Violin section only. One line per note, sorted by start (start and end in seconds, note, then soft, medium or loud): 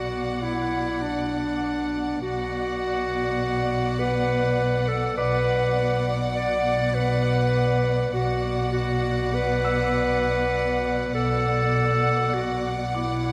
0.00 2.18 D5 soft
0.00 2.18 F#5 soft
2.22 5.14 D5 soft
2.22 5.15 F#5 soft
5.19 8.10 D5 soft
5.19 8.10 F#5 soft
8.14 11.11 D5 soft
8.14 11.11 F#5 soft
11.14 13.32 D5 soft
11.14 13.32 F#5 soft